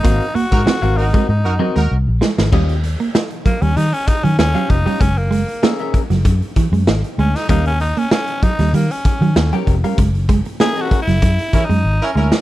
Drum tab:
CC |----------------|x---------------|----------------|----------------|
HH |xxxx-xox--------|-xxx-xxxxxxx-xxx|xxxx-xxxxxxx-xxx|xxxx-xxxxxxx-xxx|
SD |----o---------oo|----o-------o---|----o--o----o--o|----o--o----o---|
BD |o--o---o--------|o-----o---o---o-|o-----o-o-o-----|o-----o---o---o-|

CC |----------------|
HH |xxxx-xxxxxxx----|
SD |----o--o-------o|
BD |o-o---o-o-o-----|